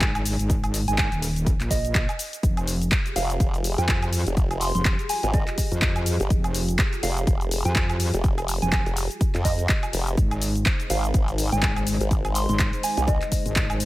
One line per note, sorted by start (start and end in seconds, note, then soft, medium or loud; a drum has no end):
0.00 0.37 G#1 loud
0.00 kick loud
0.00 clap loud
0.00 closed hi-hat medium
0.00 cabasa soft
0.15 closed hi-hat soft
0.15 cabasa soft
0.15 high woodblock medium
0.25 open hi-hat medium
0.25 cabasa medium
0.39 0.86 G#1 loud
0.39 closed hi-hat medium
0.39 cabasa soft
0.50 kick loud
0.50 closed hi-hat medium
0.50 cabasa soft
0.64 closed hi-hat soft
0.64 cabasa soft
0.64 high woodblock medium
0.74 open hi-hat loud
0.74 cabasa medium
0.88 1.10 G#1 loud
0.88 0.94 G#5 medium
0.88 closed hi-hat medium
0.88 cabasa soft
0.98 kick loud
0.98 clap loud
0.98 closed hi-hat medium
0.98 cabasa soft
1.12 1.58 D#1 loud
1.12 closed hi-hat soft
1.12 cabasa soft
1.22 open hi-hat medium
1.22 cabasa medium
1.36 closed hi-hat medium
1.36 cabasa soft
1.47 kick loud
1.47 closed hi-hat medium
1.47 cabasa medium
1.60 2.07 A#1 loud
1.60 clap soft
1.60 closed hi-hat soft
1.60 cabasa soft
1.71 2.19 D#5 medium
1.71 kick medium
1.71 open hi-hat loud
1.71 cabasa medium
1.85 closed hi-hat medium
1.85 cabasa soft
1.95 kick loud
1.95 clap loud
1.95 closed hi-hat medium
1.95 cabasa soft
2.09 closed hi-hat soft
2.09 cabasa soft
2.09 high woodblock medium
2.19 open hi-hat medium
2.19 cabasa medium
2.33 closed hi-hat medium
2.33 cabasa soft
2.43 2.90 F1 loud
2.43 10.14 F4 medium
2.43 10.14 G4 medium
2.43 10.14 G#4 medium
2.43 kick loud
2.43 closed hi-hat medium
2.43 cabasa soft
2.57 closed hi-hat soft
2.57 cabasa soft
2.57 high woodblock medium
2.67 open hi-hat loud
2.67 cabasa medium
2.82 closed hi-hat medium
2.82 cabasa soft
2.92 kick loud
2.92 clap loud
2.92 closed hi-hat medium
2.92 cabasa soft
3.06 closed hi-hat soft
3.06 cabasa soft
3.16 3.38 F1 medium
3.16 3.34 F5 medium
3.16 open hi-hat medium
3.16 cabasa medium
3.30 closed hi-hat medium
3.30 cabasa soft
3.40 3.76 F1 loud
3.40 kick loud
3.40 closed hi-hat medium
3.40 cabasa soft
3.54 closed hi-hat soft
3.54 cabasa soft
3.64 open hi-hat loud
3.64 cabasa medium
3.78 4.24 F2 medium
3.78 3.94 G#5 medium
3.78 closed hi-hat medium
3.78 cabasa soft
3.88 kick loud
3.88 clap loud
3.88 closed hi-hat medium
3.88 cabasa soft
4.02 closed hi-hat soft
4.02 cabasa soft
4.02 high woodblock medium
4.13 open hi-hat medium
4.13 cabasa medium
4.27 4.73 F1 loud
4.27 closed hi-hat medium
4.27 cabasa soft
4.37 kick loud
4.37 closed hi-hat medium
4.37 cabasa soft
4.51 closed hi-hat soft
4.51 cabasa soft
4.51 high woodblock medium
4.61 4.70 C6 medium
4.61 open hi-hat loud
4.61 cabasa medium
4.75 4.97 F1 loud
4.75 4.82 C6 medium
4.75 closed hi-hat medium
4.75 cabasa soft
4.85 kick loud
4.85 clap loud
4.85 closed hi-hat medium
4.85 cabasa soft
4.99 closed hi-hat soft
4.99 cabasa soft
5.09 5.18 G#5 medium
5.09 open hi-hat medium
5.09 cabasa medium
5.23 5.45 G#1 loud
5.23 5.30 G#5 medium
5.23 closed hi-hat medium
5.23 cabasa soft
5.34 6.02 D#5 medium
5.34 kick loud
5.34 closed hi-hat medium
5.34 cabasa soft
5.47 clap soft
5.47 closed hi-hat soft
5.47 cabasa soft
5.58 kick medium
5.58 open hi-hat loud
5.58 cabasa medium
5.72 6.18 F2 medium
5.72 closed hi-hat medium
5.72 cabasa soft
5.82 kick loud
5.82 clap loud
5.82 closed hi-hat medium
5.82 cabasa soft
5.96 closed hi-hat soft
5.96 cabasa soft
5.96 high woodblock medium
6.06 open hi-hat loud
6.06 cabasa medium
6.20 6.29 G1 loud
6.20 closed hi-hat medium
6.20 cabasa soft
6.30 6.77 F1 loud
6.30 kick loud
6.30 closed hi-hat medium
6.30 cabasa soft
6.44 closed hi-hat soft
6.44 cabasa soft
6.44 high woodblock medium
6.54 open hi-hat loud
6.54 cabasa medium
6.68 closed hi-hat medium
6.68 cabasa soft
6.79 kick loud
6.79 clap loud
6.79 closed hi-hat medium
6.79 cabasa soft
6.93 closed hi-hat soft
6.93 cabasa soft
7.03 7.26 F1 loud
7.03 7.21 F5 medium
7.03 open hi-hat loud
7.03 cabasa medium
7.17 closed hi-hat medium
7.17 cabasa soft
7.27 7.63 F1 loud
7.27 kick loud
7.27 closed hi-hat medium
7.27 cabasa soft
7.41 closed hi-hat soft
7.41 cabasa soft
7.51 open hi-hat loud
7.51 cabasa medium
7.65 8.11 F2 medium
7.65 7.81 G#5 loud
7.65 closed hi-hat medium
7.65 cabasa soft
7.76 kick loud
7.76 clap loud
7.76 closed hi-hat medium
7.76 cabasa soft
7.90 closed hi-hat soft
7.90 cabasa soft
7.90 high woodblock medium
8.00 open hi-hat loud
8.00 cabasa medium
8.14 8.60 F1 medium
8.14 closed hi-hat medium
8.14 cabasa soft
8.24 kick loud
8.24 closed hi-hat medium
8.24 cabasa soft
8.38 closed hi-hat soft
8.38 cabasa soft
8.38 high woodblock medium
8.48 open hi-hat loud
8.48 cabasa medium
8.62 8.84 F1 loud
8.62 8.69 G#5 medium
8.62 closed hi-hat medium
8.62 cabasa soft
8.72 8.81 G#5 medium
8.72 kick loud
8.72 clap loud
8.72 closed hi-hat medium
8.72 cabasa soft
8.86 9.08 F1 loud
8.86 closed hi-hat soft
8.86 cabasa soft
8.97 open hi-hat loud
8.97 cabasa medium
9.11 closed hi-hat medium
9.11 cabasa soft
9.21 kick loud
9.21 closed hi-hat medium
9.21 cabasa soft
9.35 9.67 F2 loud
9.35 clap soft
9.35 closed hi-hat soft
9.35 cabasa soft
9.45 9.93 D#5 loud
9.45 kick medium
9.45 open hi-hat loud
9.45 cabasa medium
9.59 closed hi-hat medium
9.59 cabasa soft
9.69 kick loud
9.69 clap loud
9.69 closed hi-hat medium
9.69 cabasa soft
9.83 closed hi-hat soft
9.83 cabasa soft
9.83 high woodblock medium
9.93 10.16 F1 loud
9.93 open hi-hat loud
9.93 cabasa medium
10.07 closed hi-hat medium
10.07 cabasa soft
10.17 10.64 G#1 loud
10.17 13.85 G#3 medium
10.17 13.85 D#4 medium
10.17 13.85 C5 medium
10.17 kick loud
10.17 closed hi-hat medium
10.17 cabasa soft
10.31 closed hi-hat soft
10.31 cabasa soft
10.31 high woodblock medium
10.42 open hi-hat loud
10.42 cabasa medium
10.55 closed hi-hat medium
10.55 cabasa soft
10.66 kick loud
10.66 clap loud
10.66 closed hi-hat medium
10.66 cabasa soft
10.80 closed hi-hat soft
10.80 cabasa soft
10.90 11.13 G#1 loud
10.90 11.08 F5 medium
10.90 open hi-hat medium
10.90 cabasa medium
11.04 closed hi-hat medium
11.04 cabasa soft
11.14 11.50 G#1 loud
11.14 kick loud
11.14 closed hi-hat medium
11.14 cabasa soft
11.28 closed hi-hat soft
11.28 cabasa soft
11.38 open hi-hat loud
11.38 cabasa medium
11.52 11.99 G#1 loud
11.52 11.68 G#5 medium
11.52 closed hi-hat medium
11.52 cabasa soft
11.62 kick loud
11.62 clap loud
11.62 closed hi-hat medium
11.62 cabasa soft
11.76 closed hi-hat soft
11.76 cabasa soft
11.76 high woodblock medium
11.87 open hi-hat loud
11.87 cabasa medium
12.01 12.47 G#1 medium
12.01 closed hi-hat medium
12.01 cabasa soft
12.11 kick loud
12.11 closed hi-hat medium
12.11 cabasa soft
12.25 closed hi-hat soft
12.25 cabasa soft
12.25 high woodblock medium
12.35 12.44 C6 medium
12.35 open hi-hat loud
12.35 cabasa medium
12.49 12.71 G#1 loud
12.49 12.56 C6 medium
12.49 closed hi-hat medium
12.49 cabasa soft
12.59 kick loud
12.59 clap loud
12.59 closed hi-hat medium
12.59 cabasa soft
12.73 closed hi-hat soft
12.73 cabasa soft
12.83 12.93 G#5 medium
12.83 open hi-hat medium
12.83 cabasa medium
12.97 13.19 C2 loud
12.97 13.04 G#5 medium
12.97 closed hi-hat medium
12.97 cabasa soft
13.08 13.76 D#5 medium
13.08 kick loud
13.08 closed hi-hat medium
13.08 cabasa soft
13.21 clap soft
13.21 closed hi-hat soft
13.21 cabasa soft
13.32 kick medium
13.32 open hi-hat loud
13.32 cabasa medium
13.46 13.85 G#1 loud
13.46 closed hi-hat medium
13.46 cabasa soft
13.56 kick loud
13.56 clap loud
13.56 closed hi-hat medium
13.56 cabasa soft
13.70 closed hi-hat soft
13.70 cabasa soft
13.70 high woodblock medium
13.80 open hi-hat medium
13.80 cabasa medium